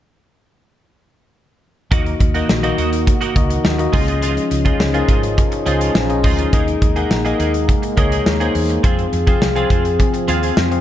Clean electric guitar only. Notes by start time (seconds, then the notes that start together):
1.91 A#3 D#4 F#4
2.06 muted clean electric guitar stroke
2.20 muted clean electric guitar stroke
2.34 A#3 D#4 F#4
2.49 muted clean electric guitar stroke
2.63 A#3 D#4 F#4
2.78 A#3 D#4 F#4
2.92 muted clean electric guitar stroke
3.07 muted clean electric guitar stroke
3.21 A#3 D#4 F#4
3.35 muted clean electric guitar stroke
3.50 muted clean electric guitar stroke
3.64 muted clean electric guitar stroke
3.79 muted clean electric guitar stroke
3.93 G#3 D#4 F4
4.07 G#3 D#4 F4
4.22 G#3 D#4 F4
4.36 muted clean electric guitar stroke
4.51 muted clean electric guitar stroke
4.65 G#3 D#4 F4
4.80 muted clean electric guitar stroke
4.94 G#3 D#4 F4
5.08 G#3 D#4 F4
5.23 muted clean electric guitar stroke
5.37 muted clean electric guitar stroke
5.52 muted clean electric guitar stroke
5.66 G#3 D#4 F4
5.81 G#3 D#4 F4
5.95 muted clean electric guitar stroke
6.10 muted clean electric guitar stroke
6.24 G#3 D#4 F4
6.38 G#3 D#4 F4
6.53 A#3 D#4 G#4
6.67 muted clean electric guitar stroke
6.82 muted clean electric guitar stroke
6.96 A#3 D#4 G#4
7.11 muted clean electric guitar stroke
7.25 A#3 D#4 G#4
7.39 A#3 D#4 G#4
7.54 muted clean electric guitar stroke
7.68 muted clean electric guitar stroke
7.83 muted clean electric guitar stroke
7.97 A#3 D#4 G#4
8.11 A#3 D#4 G#4
8.26 muted clean electric guitar stroke
8.40 A#3 D#4 G#4
8.55 muted clean electric guitar stroke
8.69 muted clean electric guitar stroke
8.83 C4 F4 G#4
8.98 muted clean electric guitar stroke
9.12 muted clean electric guitar stroke
9.27 C4 F4 G#4
9.41 muted clean electric guitar stroke
9.56 C4 F4 G#4
9.70 C4 F4 G#4
9.85 muted clean electric guitar stroke
9.99 muted clean electric guitar stroke
10.14 muted clean electric guitar stroke
10.28 C4 F4 G#4
10.42 C4 F4 G#4
10.57 muted clean electric guitar stroke
10.71 muted clean electric guitar stroke